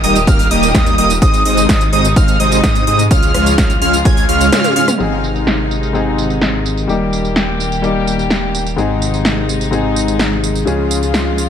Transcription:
Already playing: string section D#3 G3 A#3 G4
0.04 detuned saw bass D#1, supersaw synth G3 A#3 D#4 A#4 D#5, analog synth lead D#6, open hi-hat
0.16 closed hi-hat, tambourine
0.27 detuned saw bass D#1, supersaw synth G3 A#3 D#4 A#4 F5, analog synth lead F6, kick, closed hi-hat, tambourine
0.39 open hi-hat, tambourine
0.51 detuned saw bass D#1, supersaw synth G3 A#3 D#4 A#4 D#5, analog synth lead D#6, open hi-hat
0.63 closed hi-hat, tambourine
0.75 detuned saw bass D#2, supersaw synth G3 A#3, analog synth lead D#6, kick, snare, closed hi-hat, tambourine
0.86 closed hi-hat, tambourine
0.98 detuned saw bass D#1, supersaw synth G3 A#3 D#4 A#4 D#5, analog synth lead D#6, open hi-hat
1.10 closed hi-hat, tambourine
1.22 detuned saw bass G#1, string section C3 D#3 G#3 D#4, supersaw synth G#3 C4 D#4 C5 D#5, analog synth lead D#6, kick, closed hi-hat, tambourine
1.34 closed hi-hat, tambourine
1.45 detuned saw bass G#1, supersaw synth G#3 C4 D#4 C5 D#5, analog synth lead D#6, open hi-hat
1.57 closed hi-hat, tambourine
1.69 detuned saw bass G#1, supersaw synth G#3 C4 C5, analog synth lead D#6, kick, snare, closed hi-hat, tambourine
1.81 closed hi-hat, tambourine
1.93 detuned saw bass G#1, supersaw synth G#3 C4 D#4 C5 D#5, analog synth lead D#6, open hi-hat
2.05 closed hi-hat, tambourine
2.16 detuned saw bass G#1, supersaw synth G#3 C4 D#4 C5 F5, analog synth lead F6, kick, closed hi-hat, tambourine
2.28 closed hi-hat, tambourine
2.40 detuned saw bass G#1, supersaw synth G#3 C4 D#4 C5 D#5, analog synth lead D#6, open hi-hat
2.52 closed hi-hat, tambourine
2.63 detuned saw bass G#2, supersaw synth G#3, analog synth lead D#6, kick, snare, closed hi-hat, tambourine
2.75 closed hi-hat, tambourine
2.87 detuned saw bass G#2, supersaw synth G#3 C4 D#4 C5 D#5, analog synth lead D#6, open hi-hat
2.99 closed hi-hat, tambourine
3.11 detuned saw bass C#2, string section C#3 F3 F4, supersaw synth G#3 C#4 F4 C#5 F5, analog synth lead F6, kick, closed hi-hat, tambourine
3.23 closed hi-hat, tambourine
3.34 detuned saw bass C#2, supersaw synth G#3 C#4 F4 C#5 F5, analog synth lead F6, cross-stick, open hi-hat
3.46 closed hi-hat, tambourine
3.58 detuned saw bass C#2, supersaw synth G#3 C#4 F4 C#5 F5, analog synth lead F6, kick, snare, closed hi-hat, tambourine
3.70 closed hi-hat, tambourine
3.82 detuned saw bass C#2, supersaw synth G#3 C#4 F4 C#5 F5, analog synth lead F6, open hi-hat
3.93 closed hi-hat, tambourine
4.05 detuned saw bass C#2, supersaw synth G#3 C#4 F4 C#5 G#5, analog synth lead G#6, kick, closed hi-hat, tambourine
4.17 open hi-hat, tambourine
4.29 detuned saw bass C#2, supersaw synth G#3 C#4 F4 C#5 F5, analog synth lead F6, open hi-hat
4.41 closed hi-hat, tambourine
4.52 supersaw synth G#3 C#4 F4 C#5 F5, analog synth lead F6, snare, closed hi-hat, high tom, tambourine
4.64 closed hi-hat, high tom, tambourine
4.76 supersaw synth G#3 C#4 F4 C#5 F5, analog synth lead F6, open hi-hat
4.88 cross-stick, closed hi-hat, mid tom, tambourine
4.99 detuned saw bass G#1, grand piano G#2 G#3 C4 D#4 G#4, string section C3 D#3 G#3 D#4, tambourine
5.24 tambourine
5.36 tambourine
5.47 snare, tambourine
5.71 tambourine
5.83 tambourine
5.93 grand piano G#2 G#3 C4 D#4 G#4, tambourine
6.18 tambourine
6.30 tambourine
6.41 snare, tambourine
6.66 tambourine
6.77 tambourine
6.87 detuned saw bass D#1, grand piano G3 A#3 D#4 G4, string section G3 A#3 G4, tambourine
7.13 tambourine
7.25 tambourine
7.36 snare, tambourine
7.60 tambourine
7.72 tambourine
7.82 grand piano G3 A#3 D#4 G4, tambourine
8.07 tambourine
8.19 tambourine
8.30 snare, tambourine
8.55 tambourine
8.66 tambourine
8.76 detuned saw bass G#1, grand piano G#2 G#3 C4 D#4 G#4, string section C3 G#3 D#4, tambourine
9.02 tambourine
9.14 tambourine
9.25 snare, tambourine
9.49 tambourine
9.61 tambourine
9.71 grand piano G#2 G#3 C4 D#4 G#4, tambourine
9.96 tambourine
10.08 tambourine
10.19 snare, tambourine
10.44 tambourine
10.55 tambourine
10.65 detuned saw bass C#2, grand piano C#3 G#3 C#4 F4 G#4, string section C#3 F3 F4, tambourine
10.91 tambourine
11.03 tambourine
11.14 snare, tambourine
11.38 tambourine

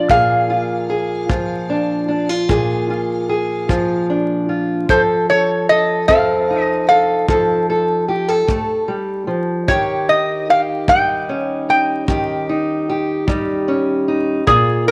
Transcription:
Already playing: steel-string acoustic guitar F3 F4, resonator guitar played with a steel bar D5
0.10 steel-string acoustic guitar A#2 G#4, resonator guitar played with a steel bar F5, kick
0.50 steel-string acoustic guitar F4
0.90 steel-string acoustic guitar G#4
1.29 steel-string acoustic guitar F3 F4, kick
1.70 steel-string acoustic guitar D4
2.08 steel-string acoustic guitar D4
2.29 steel-string acoustic guitar F4
2.49 steel-string acoustic guitar A#2 G#4, kick
2.90 steel-string acoustic guitar F4
3.29 steel-string acoustic guitar G#4
3.69 steel-string acoustic guitar F3 F4, kick
4.10 steel-string acoustic guitar D4
4.49 steel-string acoustic guitar F4
4.89 steel-string acoustic guitar F3 A4, resonator guitar played with a steel bar C5, kick
5.30 steel-string acoustic guitar A4, resonator guitar played with a steel bar C#5
5.69 steel-string acoustic guitar A4, resonator guitar played with a steel bar D#5
6.08 steel-string acoustic guitar C4 A4, resonator guitar played with a steel bar F5, kick
6.50 steel-string acoustic guitar D#4
6.64 resonator guitar played with a steel bar D#5
6.89 steel-string acoustic guitar A4, resonator guitar played with a steel bar F5
7.29 steel-string acoustic guitar F3 A4, kick
7.70 steel-string acoustic guitar A4
8.08 steel-string acoustic guitar G4
8.28 steel-string acoustic guitar A4
8.47 steel-string acoustic guitar A3, kick
8.88 steel-string acoustic guitar G3
9.27 steel-string acoustic guitar F3
9.68 steel-string acoustic guitar D#3 G4, resonator guitar played with a steel bar C#5, kick
10.09 steel-string acoustic guitar D#4, resonator guitar played with a steel bar D#5
10.49 steel-string acoustic guitar G4, resonator guitar played with a steel bar F5
10.88 steel-string acoustic guitar G3 D#4, resonator guitar played with a steel bar G5, kick
11.29 steel-string acoustic guitar C#4
11.69 steel-string acoustic guitar D#4, resonator guitar played with a steel bar G5
12.08 steel-string acoustic guitar D#3 G4, kick
12.49 steel-string acoustic guitar D#4
12.89 steel-string acoustic guitar G4
13.27 steel-string acoustic guitar G3 D#4, kick
13.68 steel-string acoustic guitar C#4
14.08 steel-string acoustic guitar D#4
14.47 steel-string acoustic guitar A#2 F4, resonator guitar played with a steel bar G#4, kick
14.88 resonator guitar played with a steel bar A#4

